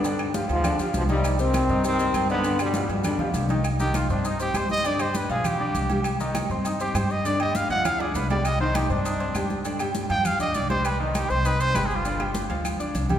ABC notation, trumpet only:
X:1
M:4/4
L:1/8
Q:1/4=200
K:Cm
V:1 name="Trumpet"
z8 | z8 | z8 | z G F D E G c e |
d c =B A G4 | z4 z G c e | d e f ^f =f A =B d | e c G D4- D |
z3 g f e d c | =B D G c B c (3B A F- | F z6 z |]